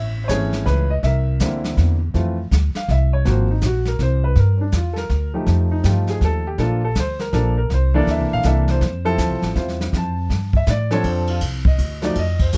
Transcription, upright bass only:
0.00 0.27 A1 medium
0.29 0.65 G#1 medium
0.66 1.02 C#2 medium
1.03 1.39 C2 medium
1.40 1.76 D2 medium
1.77 2.13 E2 medium
2.14 2.50 F2 medium
2.51 2.73 D2 medium
2.75 muted upright bass stroke soft
2.89 3.24 C2 medium
3.25 3.61 G#1 medium
3.62 3.98 A#1 medium
3.99 4.35 C2 medium
4.36 4.72 G2 medium
4.72 5.09 E2 medium
5.10 5.46 D2 medium
5.47 5.83 F2 medium
5.84 6.20 G2 medium
6.21 6.57 D#2 medium
6.58 6.94 A#1 medium
6.96 7.32 D2 medium
7.33 7.69 A#1 medium
7.70 8.06 C2 medium
8.07 8.19 D2 medium
8.19 8.31 C2 medium
8.32 8.43 A#1 medium
8.44 8.80 C2 medium
8.81 9.17 F2 medium
9.18 9.30 D2 medium
9.30 9.42 C2 medium
9.42 9.54 A1 medium
9.56 9.92 E2 medium
9.93 10.29 F2 medium
10.30 10.66 G2 medium
10.67 11.03 A2 medium
11.04 11.40 F2 medium
11.42 11.78 C2 medium
11.78 12.15 D2 medium
12.16 12.52 F2 medium
12.53 12.57 D#2 medium

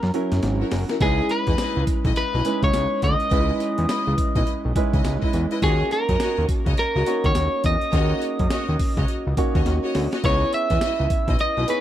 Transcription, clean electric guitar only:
0.00 0.11 A#4 medium
1.02 1.31 G#4 loud
1.31 1.84 B4 loud
2.17 2.64 B4 medium
2.64 3.01 C#5 loud
3.04 4.72 D#5 loud
5.64 5.90 G#4 loud
5.92 6.45 A#4 loud
6.79 7.26 A#4 medium
7.26 7.62 C#5 loud
7.66 9.34 D#5 loud
10.25 10.54 C#5 loud
10.54 11.36 E5 loud
11.41 11.67 D#5 loud
11.70 11.81 B4 medium

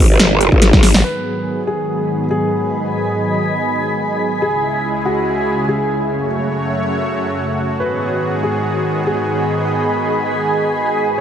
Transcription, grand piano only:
1.04 1.60 B4 medium
1.67 2.23 G#4 medium
2.31 2.86 G#4 medium
4.42 4.98 G#4 medium
5.05 5.61 F#4 medium
5.69 6.24 G#4 medium
7.80 8.36 B4 medium
8.43 8.99 G#4 medium
9.07 9.62 G#4 medium

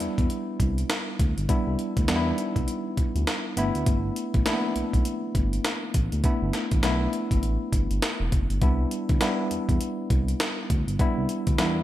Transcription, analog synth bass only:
0.01 0.08 E2 soft
0.18 0.28 E2 medium
0.60 0.84 C2 medium
1.20 1.34 D2 medium
1.38 1.47 G1 medium
1.67 1.76 C2 loud
1.97 2.06 D2 loud
2.08 2.32 E2 loud
2.56 2.65 C2 medium
2.97 3.05 D2 soft
3.15 3.25 D2 medium
3.57 3.71 G1 medium
3.75 3.84 D2 medium
3.87 4.11 G1 loud
4.35 4.44 A1 medium
4.76 4.83 B1 medium
4.94 5.03 B1 medium
5.35 5.59 G1 medium
5.95 6.09 A1 medium
6.12 6.22 D2 medium
6.42 6.52 G1 loud
6.72 6.81 A1 medium
6.83 7.07 B1 medium
7.31 7.41 G1 medium
7.43 7.58 A1 loud
7.72 7.87 G1 medium
7.91 8.00 G1 medium
8.20 8.30 E1 medium
8.32 8.47 F#1 medium
8.50 8.59 G1 medium
8.62 8.86 C2 loud
9.09 9.19 D2 medium
9.51 9.58 E2 medium
9.69 9.78 E2 medium
10.10 10.34 C2 medium
10.70 10.85 D2 medium
10.88 10.97 G1 medium
11.18 11.27 C2 loud
11.47 11.57 D2 medium
11.59 11.83 E2 loud

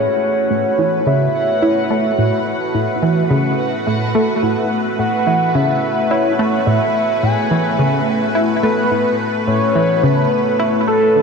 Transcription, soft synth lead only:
0.00 1.08 C#5 loud
1.07 1.64 E5 loud
1.63 1.92 C#5 medium
1.90 2.47 E5 medium
4.99 5.57 F#5 medium
5.55 6.12 E5 medium
6.11 6.68 C#5 medium
6.67 7.25 E5 loud
7.23 8.07 G#5 loud
8.63 9.16 B4 loud
9.48 10.05 C#5 loud
10.03 10.60 B4 loud
10.87 11.22 A4 loud

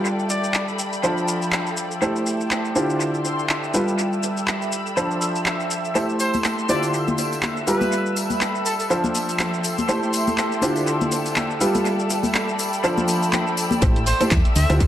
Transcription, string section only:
0.00 5.94 A4 medium
0.00 7.67 D5 medium
0.00 7.67 G5 medium
0.04 2.75 B5 medium
1.03 2.02 F3 medium
3.20 3.74 C6 medium
4.30 5.95 B5 medium
4.97 5.95 F3 medium
5.95 14.87 A4 medium
6.12 7.67 C6 medium
8.01 14.87 D5 medium
8.23 14.87 G5 medium
8.23 8.90 B5 medium
8.90 9.89 F3 medium
9.34 11.61 C6 medium
12.17 14.56 B5 medium
12.84 13.82 F3 medium

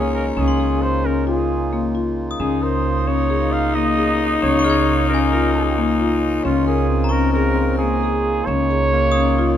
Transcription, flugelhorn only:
0.00 0.15 G#4 medium
0.15 0.25 A#4 medium
0.37 0.84 G#4 loud
0.82 1.07 C5 loud
1.06 1.27 A#4 medium
1.27 1.91 G#4 medium
2.40 2.64 G#4 medium
2.63 3.09 C5 loud
3.07 3.54 C#5 loud
3.53 3.77 F5 loud
3.75 4.42 D#5 loud
4.42 5.06 C#5 loud
5.09 5.20 A#4 medium
5.32 5.80 A#4 medium
6.45 6.66 F4 medium
6.67 7.13 G#4 loud
7.11 7.32 A#4 loud
7.33 7.76 A#4 loud
7.78 8.47 G#4 loud
8.46 9.57 C#5 loud

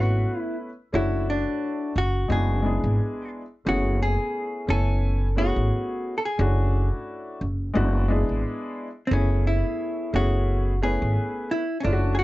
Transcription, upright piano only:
0.00 0.67 A3 medium
0.00 0.68 B3 medium
0.00 0.68 C#4 medium
0.00 0.69 E4 medium
0.00 0.69 B4 medium
0.93 1.94 A3 medium
0.93 1.95 D4 medium
0.93 1.95 E4 medium
0.93 1.96 F#4 medium
0.93 1.95 C#5 medium
2.28 2.57 G#3 medium
2.28 2.58 B3 medium
2.28 2.58 D4 medium
2.28 2.59 E4 medium
2.28 2.59 F#4 medium
2.62 3.40 G#3 medium
2.62 3.41 B3 medium
2.62 3.41 D4 medium
2.62 3.42 E4 medium
2.62 3.42 G#4 medium
3.65 4.66 A3 medium
3.65 4.66 B3 medium
3.65 4.67 C#4 medium
3.65 4.68 E4 medium
3.65 4.69 G#4 medium
4.67 5.24 A3 medium
4.67 5.25 B3 medium
4.67 5.25 C#4 medium
4.67 5.26 E4 medium
4.67 5.26 G#5 medium
5.36 6.13 A3 medium
5.36 6.14 B3 medium
5.36 6.14 C#4 medium
5.36 6.15 E4 medium
5.36 6.15 G#4 medium
6.38 7.40 A3 medium
6.38 7.40 C#4 medium
6.38 7.41 D4 medium
6.38 7.41 E4 medium
6.38 7.41 F#4 medium
7.74 8.03 G#3 medium
7.74 8.03 B3 medium
7.74 8.04 D4 medium
7.74 8.04 E4 medium
7.74 8.04 F#4 medium
8.08 8.86 G#3 medium
8.08 8.86 B3 medium
8.08 8.87 D4 medium
8.08 8.87 E4 medium
8.08 8.87 G#4 medium
9.11 10.11 A3 medium
9.11 10.12 B3 medium
9.11 10.13 C#4 medium
9.11 10.14 E4 medium
9.11 10.14 G#4 medium
10.13 10.70 A3 medium
10.13 10.70 B3 medium
10.13 10.71 C#4 medium
10.13 10.71 E4 medium
10.13 10.72 G#4 medium
10.82 11.59 A3 medium
10.82 11.59 B3 medium
10.82 11.60 C#4 medium
10.82 11.60 E4 medium
10.82 11.61 B4 medium
11.83 12.24 A3 medium
11.83 12.24 C#4 medium
11.83 12.24 D4 medium
11.83 12.24 E4 medium
11.83 11.93 F4 medium
11.93 12.24 F#4 medium

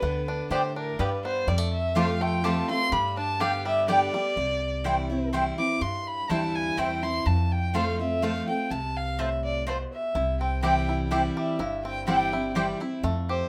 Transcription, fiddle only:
0.00 0.47 B4 loud
0.51 0.75 C5 medium
0.77 1.01 A#4 medium
1.00 1.24 B4 medium
1.25 1.50 C5 loud
1.48 1.73 D5 medium
1.73 1.98 E5 loud
1.96 2.23 F5 medium
2.21 2.46 G5 loud
2.44 2.69 A5 medium
2.70 2.94 C6 loud
2.92 3.17 B5 loud
3.18 3.42 A5 loud
3.40 3.66 F5 medium
3.66 3.87 E5 loud
3.89 5.29 D5 loud
5.59 5.83 D6 loud
5.82 6.09 C6 medium
6.07 6.31 B5 loud
6.30 6.57 A5 loud
6.55 6.80 G#5 loud
6.78 7.05 G5 medium
7.03 7.28 C6 loud
7.26 7.53 A5 medium
7.52 7.76 G5 loud
7.74 7.99 F5 medium
8.00 8.24 E5 medium
8.23 8.47 F5 loud
8.48 8.72 G5 medium
8.70 8.98 A5 medium
8.96 9.20 F5 loud
9.19 9.44 E5 medium
9.44 9.65 D5 loud
9.67 9.82 C5 medium
9.93 10.37 E5 medium
10.41 10.62 G5 medium
10.63 11.08 G5 medium
11.37 11.81 E5 medium
11.85 12.06 G5 loud
12.08 12.52 G5 loud
13.29 13.49 C5 loud

